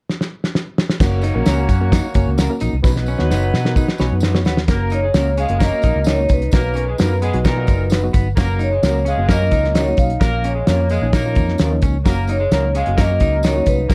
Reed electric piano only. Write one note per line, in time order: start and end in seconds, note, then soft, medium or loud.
1.01 1.25 A#3 medium
1.01 1.25 C#4 medium
1.01 1.25 F#4 medium
1.01 1.25 A#4 medium
1.34 1.67 A#3 medium
1.34 1.67 C#4 medium
1.34 1.67 F#4 medium
1.34 1.67 A#4 medium
1.81 2.05 A#3 medium
1.81 2.05 C#4 medium
1.81 2.05 F#4 medium
1.81 2.05 A#4 medium
2.15 2.40 A#3 medium
2.15 2.40 C#4 medium
2.15 2.39 F#4 medium
2.15 2.39 A#4 medium
2.50 2.74 A#3 medium
2.50 2.74 C#4 medium
2.50 2.74 F#4 medium
2.50 2.74 A#4 medium
2.83 3.07 B3 medium
2.83 3.08 D#4 medium
2.83 3.08 F#4 medium
2.83 3.08 B4 medium
3.19 3.51 B3 medium
3.19 3.51 D#4 medium
3.19 3.51 F#4 medium
3.19 3.51 C#5 medium
3.65 3.89 B3 medium
3.65 3.89 D#4 medium
3.65 3.89 F#4 medium
3.65 3.89 A#4 medium
4.00 4.24 B3 medium
4.00 4.24 D#4 medium
4.00 4.24 F#4 medium
4.00 4.24 B4 medium
4.34 4.58 B3 medium
4.34 4.58 D#4 medium
4.34 4.58 F#4 medium
4.34 4.59 C#5 medium
4.68 5.00 A#3 medium
4.68 5.00 C#4 medium
4.68 5.00 F#4 medium
4.68 5.00 A#4 medium
5.15 5.39 A#3 medium
5.15 5.39 C#4 medium
5.15 5.39 F#4 medium
5.15 5.39 C#5 medium
5.50 5.66 A#3 medium
5.50 5.66 C#4 medium
5.50 5.66 F#4 medium
5.50 5.66 A#4 medium
5.73 6.04 A#3 medium
5.73 6.04 C#4 medium
5.73 6.04 F#4 medium
5.73 6.04 A#4 medium
6.18 6.42 A#3 medium
6.18 6.42 C#4 medium
6.18 6.42 F#4 medium
6.18 6.42 C#5 medium
6.52 6.84 F#3 medium
6.52 6.85 B3 medium
6.52 6.85 D#4 medium
6.52 6.85 F#4 medium
6.98 7.23 F#3 medium
6.98 7.23 B3 medium
6.98 7.23 D#4 medium
6.98 7.23 F#4 medium
7.34 7.50 F#3 medium
7.34 7.50 B3 medium
7.34 7.50 D#4 medium
7.34 7.50 F#4 medium
7.57 7.89 B2 medium
7.57 7.88 F#3 medium
7.57 7.89 D#4 medium
7.57 7.89 F#4 medium
8.03 8.27 F#3 medium
8.03 8.27 B3 medium
8.03 8.27 D#4 medium
8.03 8.27 F#4 medium
8.37 8.69 F#3 medium
8.37 8.69 A#3 medium
8.37 8.70 C#4 medium
8.37 8.69 F#4 medium
8.83 9.07 F#3 medium
8.83 9.07 A#3 medium
8.83 9.07 C#4 medium
8.83 9.07 F#4 medium
9.18 9.34 F#3 medium
9.18 9.34 A#3 medium
9.18 9.34 C#4 medium
9.18 9.34 F#4 medium
9.42 9.73 F#3 medium
9.42 9.73 A#3 medium
9.42 9.74 C#4 medium
9.42 9.74 F4 medium
9.88 10.11 F#3 medium
9.88 10.11 A#3 medium
9.88 10.12 C#4 medium
9.88 10.12 F#4 medium
10.22 10.54 F3 medium
10.22 10.54 A#3 medium
10.22 10.54 C#4 medium
10.22 10.54 F4 medium
10.68 10.91 F3 medium
10.68 10.92 A#3 medium
10.68 10.91 C#4 medium
10.68 10.91 F4 medium
11.02 11.18 F3 medium
11.02 11.18 A#3 medium
11.02 11.18 C#4 medium
11.02 11.18 D#4 medium
11.26 11.57 F3 medium
11.26 11.57 A#3 medium
11.26 11.57 C#4 medium
11.26 11.57 F4 medium
11.71 11.95 F3 medium
11.71 11.95 A#3 medium
11.71 11.95 C#4 medium
11.71 11.95 D#4 medium
12.06 12.37 F#3 medium
12.06 12.37 A#3 medium
12.06 12.38 C#4 medium
12.06 12.38 F#4 medium
12.52 12.76 F#3 medium
12.52 12.76 A#3 medium
12.52 12.76 C#4 medium
12.52 12.76 D#4 medium
12.87 13.03 F#3 medium
12.87 13.03 A#3 medium
12.87 13.03 C#4 medium
12.87 13.03 F#4 medium
13.11 13.42 F#3 medium
13.11 13.42 A#3 medium
13.11 13.42 C#4 medium
13.11 13.42 F#4 medium
13.57 13.80 F#3 medium
13.57 13.80 A#3 medium
13.57 13.80 C#4 medium
13.57 13.80 F#4 medium
13.90 13.95 F#3 medium
13.90 13.95 B3 medium
13.90 13.95 D#4 medium
13.90 13.95 F#4 medium